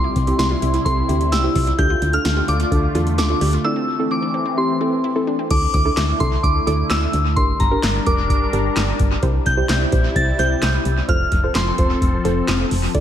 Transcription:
Already playing: C3 G3 C4 E4 G4 C6
0.04 E4
0.16 C2, kick, closed hi-hat
0.27 C4 E4 G4, closed hi-hat
0.39 C2 E4 C6, snare, closed hi-hat
0.51 F4
0.62 C2 E4, closed hi-hat
0.74 E4, closed hi-hat
0.85 C2 C4 E4 A4 C6, kick, closed hi-hat
1.09 D2 C4 E4 G4, closed hi-hat
1.21 closed hi-hat
1.32 C2 G4 E6, snare, closed hi-hat
1.44 C4 E4 G4
1.55 C2 F4, kick, open hi-hat
1.67 E4, closed hi-hat
1.78 D2 D3 A3 D4 F4 G4 A4 G6, kick, closed hi-hat
1.90 F4
2.02 D2, closed hi-hat
2.13 D4 F4 A4 F6, closed hi-hat
2.25 D2 F4, snare, closed hi-hat
2.37 G4
2.48 D2 F4 D6, closed hi-hat
2.60 F4, closed hi-hat
2.71 D2 D4 F4 A4, kick, closed hi-hat
2.95 E2 D4 F4 A4, closed hi-hat
3.07 closed hi-hat
3.18 D2 A4 D6, snare, closed hi-hat
3.30 D4 F4 A4
3.41 D2 G4, open hi-hat
3.53 F4, closed hi-hat
3.64 E3 C4 D4 E4 A4 E6
3.76 C4
3.99 C4 E4 A4
4.11 C4 D6
4.22 D4
4.34 C4
4.46 C4
4.57 C4 E4 G4 C6
4.81 C4 E4 A4
5.04 E4
5.16 C4 E4 A4
5.27 D4
5.39 C4
5.50 D2 D3 A3 D4 E4 A4 D6, kick, closed hi-hat, crash
5.74 D2 D6, kick, closed hi-hat
5.85 D4 E4 A4
5.97 D2, snare, clap, closed hi-hat
6.20 C2 D4 E4 A4 C6, kick, closed hi-hat
6.43 D2 D6, kick, closed hi-hat
6.67 D2 D4 E4 A4 D6, closed hi-hat
6.90 D2 E6, snare, clap, closed hi-hat
7.13 D2, closed hi-hat
7.36 G1 G3 D4 G4 A#4 C6, kick, closed hi-hat
7.60 G1 A#5, kick, closed hi-hat
7.71 D4 G4 A#4
7.83 G1, snare, clap, closed hi-hat
8.06 F1 D4 G4 A#4 D6, kick, closed hi-hat
8.30 G1 D6, kick, closed hi-hat
8.53 G1 D4 G4 A#4, closed hi-hat
8.76 G1, snare, clap, closed hi-hat
8.99 G1, kick, closed hi-hat
9.23 C2 C3 G3 E4 G4 C5, kick, closed hi-hat
9.46 C2 G6, kick, closed hi-hat
9.57 E4 G4 C5
9.69 C2, snare, clap, closed hi-hat
9.92 A#1 E4 G4 C5, kick, closed hi-hat
10.16 C2 A6, kick, closed hi-hat
10.39 C2 E4 G4 C5 G6, closed hi-hat
10.62 C2, snare, clap, closed hi-hat
10.85 C2, closed hi-hat
11.08 F1 F3 C4 F4 A4 C5 F6, kick, closed hi-hat
11.32 F1, kick, closed hi-hat
11.43 F4 A4 C5
11.55 F1 C6, snare, clap, closed hi-hat
11.78 E1 F4 A4 C5, kick, closed hi-hat
12.02 F1, kick, closed hi-hat
12.25 F1 F4 A4 C5, closed hi-hat
12.48 F1, snare, clap, closed hi-hat
12.71 F1, open hi-hat
12.95 D2 D3 A3 E4 A4 D5, kick, closed hi-hat

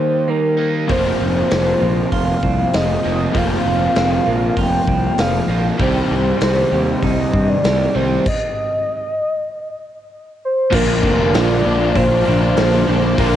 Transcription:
Already playing: D#3 G3 A#3 D#4 G4 C5
0.27 D#3 G3 A#3 D#4 A#4
0.57 D#3 A#3 D#4
0.87 F1 F2 C3 F3 A#3 C4 F4 C5, kick, open hi-hat
1.20 F1 F3
1.50 F1 C4, snare, open hi-hat
1.79 A#1 F3 A#3 C4 F4
2.12 F1 F4 F5, kick, open hi-hat
2.43 C2 C4, kick
2.72 F1 F3 A#3 C4 F4 D#5, snare, open hi-hat
3.04 F1 F2 C3 F3 A#3
3.31 F1 F2 C3 F3 A#3, kick, open hi-hat
3.37 F3 C4 F4 F5
3.52 snare
3.65 F1 F3
3.95 F1 C4, snare, open hi-hat
4.25 A#1 F3 A#3 C4 F4
4.57 F1 F4 G5, kick, open hi-hat
4.87 C2 C4, kick
5.17 F1 F3 A#3 C4 F4 F5, snare, open hi-hat
5.48 A#1 F2 C3 F3 A#3
5.78 C2 C3 D#3 G3 C4 G4, kick, open hi-hat
5.82 C5
6.10 C2 G3
6.41 C2 C4, snare, open hi-hat
6.71 D#2 C3 D#3 G3 C4 G4
7.03 C2 D#4 D#5, kick, open hi-hat
7.33 G2 C4, kick
7.49 D5
7.63 C2 C3 D#3 G3 C4 G4, snare, open hi-hat
7.94 C2 C3 G3 C4 C5
8.26 D#5, kick, crash
10.45 C5
10.70 A#1 A#2 D3 F3 A#3 D4 F4 F5 A5 D6, kick, crash
10.75 A#4
10.87 F3 A#3 D4
11.02 F1 D3 F3 A#3 D4 F4, kick
11.19 A#3 D4 F4
11.33 A#1 A#2 D3 F3 A#3 D4 F4 D5, snare, open hi-hat
11.64 A#1 D3 F3 A#3 D4 F4, muted overdriven electric guitar stroke
11.78 F3 A#3 D4 F4
11.83 A#3 D4
11.96 A#1 D4 C5, kick, open hi-hat
12.09 F3 A#3 D4 F4
12.25 A#1 D3 F3 A#3 D4
12.41 A#3 D4 F4
12.56 A#1 A#2 D3 F3 A#3 D4 F4, snare, open hi-hat
12.71 F3 A#3 D4
12.86 A#1 D3 F3 A#3 D4 F4
13.01 F3 A#3 D4 F4
13.17 A#1 A#2 D3 F3 A#3 D4 F4 A#4, kick, open hi-hat
13.33 D4

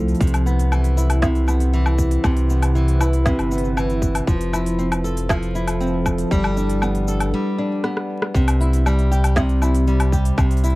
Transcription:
Already playing: C2 F3 A3 C4 E4 A4
0.08 open hi-hat, cabasa
0.15 open hi-hat, cabasa
0.20 C2 C3, kick, open hi-hat, cabasa
0.27 open hi-hat, cabasa
0.34 open hi-hat, cabasa, low woodblock
0.46 B3, cabasa
0.59 open hi-hat, cabasa
0.72 E3, cabasa, low woodblock
0.84 open hi-hat, cabasa
0.97 E4, cabasa
1.10 open hi-hat, cabasa, low woodblock
1.22 C3, kick, snare, cabasa
1.35 open hi-hat, cabasa
1.48 B3, cabasa, low woodblock
1.60 open hi-hat, cabasa
1.73 E3, cabasa
1.86 cabasa, low woodblock
1.98 kick, cabasa
2.04 B4
2.11 open hi-hat, cabasa
2.24 C2 C3, kick, cabasa, low woodblock
2.37 open hi-hat, cabasa
2.50 B3, cabasa
2.62 open hi-hat, cabasa, low woodblock
2.75 E3, cabasa
2.88 open hi-hat, cabasa
3.00 E4, cabasa, low woodblock
3.13 open hi-hat, cabasa
3.26 C3, kick, snare, cabasa
3.38 G1, open hi-hat, cabasa, low woodblock
3.51 B3, cabasa
3.58 open hi-hat
3.64 cabasa
3.77 E3, cabasa, low woodblock
3.90 open hi-hat, cabasa
4.02 kick, cabasa
4.15 open hi-hat, cabasa, low woodblock
4.27 F1 F3, kick, cabasa
4.41 open hi-hat, cabasa
4.53 E4, cabasa, low woodblock
4.66 open hi-hat, cabasa
4.79 C4, cabasa
4.92 open hi-hat, cabasa, low woodblock
5.04 A4, cabasa
5.17 A4, open hi-hat, cabasa
5.29 F3, kick, snare, cabasa, low woodblock
5.43 open hi-hat, cabasa
5.55 E4, cabasa
5.68 open hi-hat, cabasa, low woodblock
5.81 C4, cabasa
6.06 kick, cabasa, low woodblock
6.18 open hi-hat, cabasa
6.31 G1 G3, kick, cabasa
6.44 cabasa, low woodblock
6.57 D4, cabasa
6.69 open hi-hat, cabasa
6.82 B3, cabasa, low woodblock
6.95 open hi-hat, cabasa
7.08 A4, cabasa
7.20 open hi-hat, cabasa, low woodblock
7.34 G3
7.58 D4
7.84 B3, cross-stick
7.97 cross-stick
8.22 cross-stick
8.34 C2 C3, kick, cabasa
8.48 open hi-hat, cabasa, low woodblock
8.60 E4, cabasa
8.73 open hi-hat, cabasa
8.86 G3, cabasa, low woodblock
8.99 open hi-hat, cabasa
9.11 C4 G4, cabasa
9.24 open hi-hat, cabasa, low woodblock
9.36 C3, kick, snare, cabasa
9.49 open hi-hat, cabasa
9.62 E4, cabasa, low woodblock
9.75 open hi-hat, cabasa
9.87 G3, cabasa
10.00 open hi-hat, cabasa, low woodblock
10.12 G4, kick, cabasa
10.17 E5
10.25 open hi-hat, cabasa
10.38 C2 C3, kick, cabasa, low woodblock
10.51 open hi-hat, cabasa
10.57 open hi-hat
10.64 E4, open hi-hat, cabasa
10.70 open hi-hat

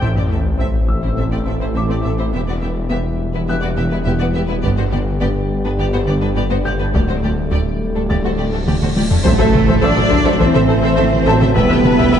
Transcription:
0.01 A1 A2 E3 A3 C4 E4 A4 E5, taiko, sub drop
0.16 A2 C4 G4 D5
0.31 A1 A2 C4 A4 E5
0.60 A1 A2 C4 A4 E5
0.88 E5 E6, taiko
1.02 A2 C4 E4 C5
1.17 A1 A2 C4 A4 E5
1.32 A2 C4 G4 D5
1.45 A1 A2 C4 A4 E5
1.60 A2 C4 E4 C5
1.74 A1 A2 C4 A4 E5 D6
1.89 A2 C4 G4 D5
2.03 A1 A2 C4 A4 E5
2.18 A2 C4 E4 C5
2.33 E1 E2 G3 B3 G4 E5
2.48 E2 B3 F#4 D5
2.61 E1 E2 B3 G4 E5
2.89 E1 E2 B3 G4 E5
3.33 E2 B3 E4 B4
3.48 E1 E2 B3 G4 E5 F#6
3.61 E2 B3 F#4 D5
3.76 E1 E2 B3 G4 E5
3.90 E2 B3 E4 B4
4.03 E1 E2 B3 G4 E5
4.18 E2 B3 F#4 D5
4.33 E1 E2 B3 G4 E5
4.46 E2 B3 E4 B4
4.61 G1 G2 D3 B3 G4 D5, taiko
4.76 G2 B3 F#4 C5
4.91 G1 G2 B3 G4 D5
5.21 G1 G2 B3 G4 D5
5.64 G2 B3 D4 B4
5.78 G1 G2 B3 G4 D5
5.92 G2 B3 F#4 C5
6.07 G1 G2 B3 G4 D5
6.21 G2 B3 D4 B4
6.35 G1 G2 B3 G4 D5
6.50 G2 B3 F#4 C5
6.64 G1 G2 B3 G4 D5 G6
6.78 G2 B3 D4 B4
6.93 D1 D2 G3 A3 G4 A4 D5, taiko, cymbal swell
7.07 D2 A3 F#4 C5
7.23 D2 A3 G4 D5
7.51 D2 A3 G4 D5
7.95 D2 A3 D4 A4
8.09 D2 A3 G4 D5 A6, taiko
8.24 D2 A3 F#4 C5
8.37 D2 A3 G4 D5
8.52 D2 A3 D4 A4
8.67 D2 A3 G4 D5, taiko mid
8.81 D2 A3 F#4 C5, taiko mid
8.95 D2 A3 G4 D5, taiko high
9.10 D2 A3 D4 A4, taiko low
9.24 A1 E3 F#3 A3 A4 C5 E5, taiko, impact
9.39 A1 A4 C5 E5
9.53 A1 E3 A4 C5, taiko mid
9.68 A1 A4 C5 E5, taiko
9.81 A1 F#3 D4 A4 C5 D5 E5 E6
9.95 A1 A4 C5, taiko mid
10.10 A1 A4 C5 E5, taiko
10.25 A1 A4 C5 E5
10.39 A1 E3 C4 A4 C5 E5, taiko
10.54 A1 A4 C5 E5, taiko mid
10.69 A1 A4 C5
10.83 A1 A4 C5 E5
10.97 A1 E3 A4 C5 E5, taiko mid
11.13 taiko mid
11.26 A1 F#3 A4 C5 E5 A5
11.40 A1 A4 C5 E5, taiko mid
11.55 E1 G3 B3 B4 E5 G5, taiko
11.70 E1 B4 E5 G5
11.84 E1 B4 E5, taiko mid
11.98 E1 B4 E5 G5, taiko
12.12 E1 E3 B4 E5 G5

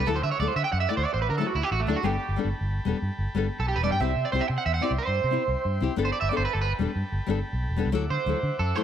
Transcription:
0.06 D2 F#3 A3 E4 A4 E5 F#5 D6
0.16 C5
0.23 D3 E5
0.31 C#5
0.40 D2 F#3 A3 E4 A4 D5
0.48 C5
0.56 D3 E5
0.64 G5
0.72 F#2 F#5
0.80 E5
0.89 A3 E4 D5
0.97 D2 C5
1.05 D5
1.14 A1 C5
1.22 B4
1.30 D3 A#4
1.38 F#3 A3 E4 A4
1.47 F#4
1.55 D2 E4
1.63 G4
1.71 A1 F#4
1.80 A3
1.87 D2 F#3 A3 D4 E4 A4
1.96 F#4
2.03 G1 G3 B3 D4 G4 A4 G5 A5 B5
2.29 G1
2.36 G3 B3 D4 A4
2.45 G1
2.61 G1
2.85 E1 G3 B3 D4 A4
3.02 G2
3.19 G1
3.35 G1 G3 B3 D4 A4
3.59 B1 A4
3.68 G4
3.76 E1 B4
3.83 G3 B3 D4 D5
3.92 G2 G5
4.00 C2 C4 E4 G4 E5 G5 C6
4.17 C3
4.25 D5
4.32 C2 C4 E4 G4 C5
4.41 E5
4.48 C3, muted clean electric guitar stroke
4.58 F#5
4.66 E2 E5
4.74 F#5
4.81 C4 E4 G4 D5
4.91 C2
4.98 C5
5.08 G2
5.24 C3
5.31 C4 E4 G4
5.48 C2
5.65 G2
5.81 C2 C4 E4 G4
5.96 G1 B3 D4 A4 A5 B5, muted nylon-string guitar stroke
6.05 C5
6.12 D5
6.21 G1 E5
6.29 B3 D4 A4 D5
6.37 G1 C5
6.45 B4
6.53 G1 A4
6.62 B4
6.79 E1 G3 B3 D4 A4
6.96 G2
7.12 G1
7.27 G1 G3 B3 D4 A4
7.53 B1
7.69 E1
7.77 G3 B3 D4 A4
7.86 C2
7.92 D2 F#3 A3 E4 A4 E5 F#5 D6
8.10 D3 C5
8.26 D2 F#3 A3 E4 A4
8.43 D3
8.59 F#2 A4
8.75 F#3 A3 E4 A4 C5

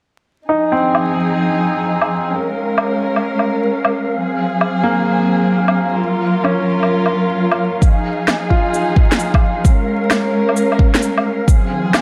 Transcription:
0.49 F3 D#4 G#4 F5
0.72 C4
0.95 low woodblock
2.02 low woodblock
2.31 G#3 C#4 A#4
2.78 low woodblock
3.16 low woodblock
3.39 low woodblock
3.85 low woodblock
4.15 F#3 C4 G#4
4.61 low woodblock
4.83 A#3
5.68 low woodblock
5.98 F4 A#4
6.44 C#4, low woodblock
6.83 low woodblock
7.06 low woodblock
7.52 low woodblock
7.81 F3 D#4 G#4, kick, shaker
8.28 snare, low woodblock, shaker
8.50 F4, kick
8.74 shaker
8.96 kick
9.12 snare, shaker
9.19 shaker
9.34 kick, low woodblock
9.64 G#3 C#4 A#4, kick, shaker
10.11 snare, low woodblock, shaker
10.49 low woodblock
10.57 shaker
10.72 low woodblock
10.79 kick
10.95 snare, shaker
11.03 shaker
11.18 low woodblock
11.48 F#3 C4 G#4, kick, riser, shaker
11.94 snare, low woodblock, shaker

